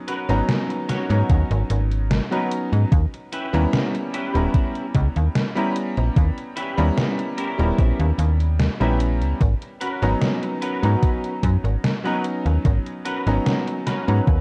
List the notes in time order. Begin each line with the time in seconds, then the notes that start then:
Already playing: F#3 B3 C#4 D#4 A#5
0.08 C#4 F#4 A#4 B4, closed hi-hat
0.29 G#1 F#3 B3 C#4 D#4 A#5, closed hi-hat
0.49 snare, closed hi-hat
0.70 muted clean electric guitar stroke, closed hi-hat
0.89 C#4 F#4 A#4 C#5, snare, closed hi-hat
1.09 G#2 F#3 B3 C#4 D#4 A#5, closed hi-hat
1.30 D#2, kick, closed hi-hat
1.51 G#1, closed hi-hat
1.70 G#1, closed hi-hat
1.91 closed hi-hat
2.11 snare, closed hi-hat
2.31 F#3 B3 C#4 D#4 F#4 A#4 B4 A#5, closed hi-hat
2.51 closed hi-hat
2.72 G#2, muted clean electric guitar stroke, closed hi-hat
2.92 D#2, kick, closed hi-hat
3.14 closed hi-hat
3.32 C#4 E4 G4 B4, closed hi-hat
3.53 D#2 G3 B3 C#4 E4 A#5, closed hi-hat
3.73 snare, closed hi-hat
3.94 muted clean electric guitar stroke, closed hi-hat
4.13 C#4 E4 G4 B4, closed hi-hat
4.34 D#1 G3 B3 C#4 E4 A#5, closed hi-hat
4.54 kick, closed hi-hat
4.75 closed hi-hat
4.95 C#2, kick, closed hi-hat
5.16 D#2, closed hi-hat
5.35 snare, closed hi-hat
5.55 G3 B3 C#4 E4 G4 B4 A#5, closed hi-hat
5.76 closed hi-hat
5.97 A#1, muted clean electric guitar stroke, closed hi-hat
6.16 D#2, kick, closed hi-hat
6.38 closed hi-hat
6.56 C#4 E4 G4 B4, closed hi-hat
6.77 D#2 G3 B3 C#4 E4 A#5, closed hi-hat
6.98 snare, closed hi-hat
7.18 muted clean electric guitar stroke, closed hi-hat
7.37 C#4 E4 G4 A#4, closed hi-hat
7.58 D#1 G3 B3 C#4 E4 A#5, closed hi-hat
7.78 A#1, kick, closed hi-hat
7.99 D#2, closed hi-hat
8.18 D#2, closed hi-hat
8.40 closed hi-hat
8.59 snare, closed hi-hat
8.80 A#1 G3 B3 C#4 E4 G4 B4 A#5, closed hi-hat
9.00 closed hi-hat
9.21 C#2, muted clean electric guitar stroke, closed hi-hat
9.41 G#1, kick, closed hi-hat
9.62 closed hi-hat
9.81 C#4 F#4 A#4 B4, closed hi-hat
10.02 G#1 F#3 B3 C#4 D#4 A#5, closed hi-hat
10.22 snare, closed hi-hat
10.43 muted clean electric guitar stroke, closed hi-hat
10.62 C#4 F#4 A#4 B4, closed hi-hat
10.82 G#2 F#3 B3 C#4 D#4 A#5, closed hi-hat
11.03 kick, closed hi-hat
11.24 closed hi-hat
11.43 F#2, kick, closed hi-hat
11.64 G#1, closed hi-hat
11.84 snare, closed hi-hat
12.04 F#3 B3 C#4 D#4 F#4 A#4 B4 A#5, closed hi-hat
12.24 closed hi-hat
12.45 D#2, muted clean electric guitar stroke, closed hi-hat
12.65 G#1, kick, closed hi-hat
12.86 closed hi-hat
13.05 C#4 F#4 A#4 B4, closed hi-hat
13.26 G#1 F#3 B3 C#4 D#4 A#5, closed hi-hat
13.46 snare, closed hi-hat
13.67 muted clean electric guitar stroke, closed hi-hat
13.86 C#4 F#4 A#4 B4, snare, closed hi-hat
14.07 G#2 F#3 B3 C#4 D#4 A#5, closed hi-hat
14.27 D#2, kick, closed hi-hat